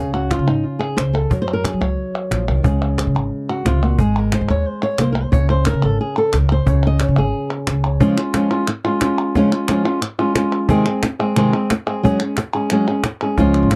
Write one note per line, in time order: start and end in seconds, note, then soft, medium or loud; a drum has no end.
0.00 0.31 C#2 medium
0.00 1.29 C#3 medium
0.00 0.13 G#4 medium
0.14 0.31 F#4 medium
0.31 0.48 F4 medium
0.31 cajon slap medium
0.31 clap medium
0.39 0.46 C#3 medium
0.47 0.61 G#1 medium
0.47 0.64 D#4 medium
0.47 cajon slap soft
0.63 0.81 F4 medium
0.79 0.97 G#4 medium
0.97 1.25 C#2 medium
0.97 1.14 C5 medium
0.97 cajon slap loud
0.97 clap medium
1.13 1.31 A4 medium
1.30 1.65 F#2 medium
1.30 2.63 F#3 medium
1.30 1.41 A#4 medium
1.30 cajon bass loud
1.42 1.53 C5 loud
1.53 1.65 A#4 medium
1.64 1.81 G#4 medium
1.64 cajon slap loud
1.64 clap medium
1.73 1.80 F#3 medium
1.81 1.95 C#2 medium
1.81 2.65 C#5 medium
2.31 2.47 A#1 medium
2.31 2.47 F3 medium
2.31 cajon slap medium
2.31 clap medium
2.48 2.64 C2 medium
2.48 2.65 D#3 medium
2.64 2.99 C#2 medium
2.64 3.65 C#3 medium
2.64 4.00 G#3 soft
2.64 3.66 G#4 soft
2.64 cajon bass loud
2.81 cajon slap soft
2.98 cajon slap loud
2.98 clap medium
3.07 3.14 C#3 medium
3.15 3.29 G#1 medium
3.15 cajon slap soft
3.49 3.66 F#4 medium
3.65 3.93 C#2 medium
3.65 3.83 C3 medium
3.65 3.83 F4 medium
3.65 cajon slap medium
3.65 clap medium
3.83 4.00 A#2 medium
3.83 4.00 F#4 medium
3.99 4.33 G#1 medium
3.99 4.99 G#3 medium
3.99 4.16 G#4 medium
3.99 cajon bass loud
4.16 4.34 A#4 loud
4.16 cajon slap soft
4.32 4.50 C5 medium
4.32 cajon slap medium
4.32 clap medium
4.41 4.48 G#2 medium
4.49 4.63 D#2 medium
4.49 4.67 C#5 loud
4.67 4.83 C5 loud
4.83 5.00 C#5 loud
4.98 5.27 C2 medium
4.98 5.17 A#3 medium
4.98 5.12 C5 medium
4.98 cajon slap loud
4.98 clap medium
5.12 5.23 A#4 medium
5.23 5.32 C5 loud
5.32 5.67 C#2 medium
5.32 6.66 C#3 medium
5.32 5.49 C#5 loud
5.32 cajon bass loud
5.50 5.66 C5 loud
5.65 5.84 A#4 medium
5.65 cajon slap loud
5.65 clap medium
5.74 5.81 C#3 medium
5.83 5.97 G#1 medium
5.83 6.00 A4 loud
5.83 cajon slap soft
6.01 6.17 G#4 medium
6.18 6.34 A4 medium
6.33 6.61 C#2 medium
6.33 6.51 A#4 loud
6.33 cajon slap loud
6.33 clap medium
6.52 6.69 C5 loud
6.66 7.01 C#2 medium
6.66 7.99 C#3 medium
6.66 6.85 C#5 loud
6.66 cajon bass loud
6.87 7.02 D#5 loud
7.00 7.18 C#5 medium
7.00 cajon slap medium
7.00 clap medium
7.08 7.16 C#3 loud
7.17 7.31 G#1 medium
7.17 7.52 G#4 loud
7.67 7.95 C#2 medium
7.67 cajon slap loud
7.67 clap medium
7.86 8.00 C#5 soft
8.00 8.17 C#3 loud
8.00 8.17 F3 loud
8.00 8.18 G#3 medium
8.00 8.17 C#4 medium
8.00 8.16 F4 loud
8.00 cajon bass loud
8.17 8.34 G#3 soft
8.17 8.34 C#4 medium
8.17 8.34 F4 medium
8.17 clap medium
8.34 8.51 F3 medium
8.34 8.51 G#3 medium
8.34 8.50 C#4 medium
8.34 8.49 F4 medium
8.34 cajon slap loud
8.34 clap medium
8.51 8.67 G#3 soft
8.51 8.68 C#4 medium
8.51 8.67 F4 medium
8.67 muted nylon-string guitar stroke medium
8.67 clap medium
8.84 9.02 G#3 medium
8.84 9.01 C#4 medium
8.84 9.00 F4 medium
9.01 9.35 G#3 medium
9.01 9.35 C#4 medium
9.01 9.35 F4 medium
9.01 cajon slap loud
9.01 clap loud
9.18 cajon slap soft
9.35 9.52 C#3 medium
9.35 9.52 F3 medium
9.35 9.52 G#3 loud
9.35 9.52 C#4 loud
9.35 9.50 F4 loud
9.35 cajon bass loud
9.35 cajon slap soft
9.52 9.68 G#3 soft
9.52 9.69 C#4 medium
9.52 9.68 F4 medium
9.52 cajon slap soft
9.52 clap medium
9.68 9.85 F3 medium
9.68 9.85 G#3 medium
9.68 9.84 C#4 medium
9.68 9.83 F4 medium
9.68 cajon slap loud
9.68 clap loud
9.85 10.01 G#3 soft
9.85 10.01 C#4 medium
9.85 10.01 F4 medium
10.01 muted nylon-string guitar stroke medium
10.01 clap loud
10.19 10.35 G#3 medium
10.19 10.35 C#4 medium
10.19 10.34 F4 medium
10.35 10.69 G#3 medium
10.35 10.69 C#4 medium
10.35 10.68 F4 medium
10.35 cajon slap loud
10.35 clap loud
10.69 10.85 C3 loud
10.69 10.86 D#3 loud
10.69 10.86 G#3 medium
10.69 10.86 C4 loud
10.69 10.85 G#4 loud
10.69 cajon bass loud
10.86 11.03 G#3 soft
10.86 11.03 C4 medium
10.86 11.02 G#4 medium
10.86 clap medium
11.03 muted nylon-string guitar stroke medium
11.03 cajon slap loud
11.03 clap medium
11.20 11.36 G#3 medium
11.20 11.36 C4 medium
11.20 11.36 G#4 medium
11.36 11.53 C3 medium
11.36 11.53 D#3 medium
11.36 11.53 G#3 medium
11.36 11.53 C4 medium
11.36 11.52 G#4 medium
11.36 clap medium
11.54 11.70 G#3 medium
11.54 11.70 C4 medium
11.54 11.70 G#4 medium
11.70 muted nylon-string guitar stroke medium
11.70 cajon slap loud
11.70 clap medium
11.87 12.03 G#3 soft
11.87 12.03 C4 medium
11.87 12.03 G#4 medium
12.03 12.20 F#3 medium
12.03 12.20 G#3 medium
12.03 12.20 C#4 medium
12.03 12.19 G#4 loud
12.03 cajon bass loud
12.20 12.37 G#3 soft
12.20 12.37 C#4 soft
12.20 12.37 G#4 medium
12.20 clap medium
12.37 muted nylon-string guitar stroke medium
12.37 cajon slap loud
12.37 clap medium
12.55 12.70 G#3 medium
12.55 12.71 C#4 medium
12.55 12.70 G#4 medium
12.70 12.87 F#3 medium
12.70 12.87 G#3 medium
12.70 12.88 C#4 medium
12.70 12.87 G#4 medium
12.70 clap loud
12.88 13.04 G#3 medium
12.88 13.05 C#4 medium
12.88 13.04 G#4 medium
13.04 muted nylon-string guitar stroke medium
13.04 cajon slap loud
13.04 clap medium
13.22 13.37 G#3 soft
13.22 13.38 C#4 soft
13.22 13.38 G#4 medium
13.37 13.58 C#2 medium
13.37 13.71 C#3 medium
13.37 13.70 F3 medium
13.37 13.71 G#3 medium
13.37 13.71 C#4 loud
13.37 13.71 F4 loud
13.37 cajon bass loud
13.37 cajon slap soft
13.54 clap medium
13.63 13.76 G#1 medium
13.71 13.76 F3 medium
13.71 13.76 G#3 medium
13.71 cajon slap loud
13.71 clap loud